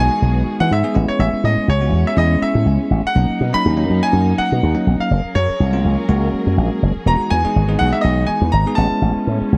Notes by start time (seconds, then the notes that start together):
Already playing: D#3 E3 G#3 B3 D#4 F#4 G#4
0.00 G#5
0.22 B1
0.60 E3 F#5
0.71 G#2 E5
0.83 G#3 B3 D#4 G#4
0.94 A1 G#3 B3 C#4 E4
1.08 C#5
1.19 A1 E5
1.33 muted slap bass stroke
1.44 A2 D#5
1.57 muted slap bass stroke
1.68 C#2 C#5
1.81 G#3 B3 C#4 F#4
1.92 E2
2.07 E5
2.16 E2 G#3 B3 C#4 E4 D#5
2.42 E5, muted slap bass stroke
2.55 A2
2.66 C#2
2.91 A1
3.05 F#5, muted slap bass stroke
3.15 B1 F#3 A#3 C#4 D#4
3.41 B2
3.53 F#3 A#3 C#4 D#4 B5, muted slap bass stroke
3.66 D#2
3.76 F#3 A#3 C#4 D#4
3.90 F#2
4.03 G#5
4.13 F#2
4.38 F#5, muted slap bass stroke
4.52 B2
4.63 D#2
4.75 F#3 A#3 C#4 D#4
4.87 B1
5.00 F5, muted slap bass stroke
5.11 F#1 F#3 C#4 G#4 A#4
5.35 F#2 C#5
5.50 muted slap bass stroke
5.60 C2
5.73 G#3 A#3 C#4 F4
5.85 C#2
6.09 C#2 G#3 A#3 C#4 F#4
6.34 muted slap bass stroke
6.47 F#2
6.57 A#1
6.82 F#1
7.06 E1 E3 G#3 B3 D#4 F#4 A#5
7.30 E2 G#5
7.45 G#3 B3 D#4 G#4, muted slap bass stroke
7.56 G#1
7.68 G#3 B3 D#4 G#4
7.79 B1 F#5
7.93 E5
8.01 B1 D#5
8.27 G#5
8.41 E2
8.52 G#1 A#5
8.67 G#3 B3 D#4 G#4
8.75 A1 G#3 B3 C#4 E4 A5
9.02 A1
9.27 A2
9.41 muted slap bass stroke
9.52 C#2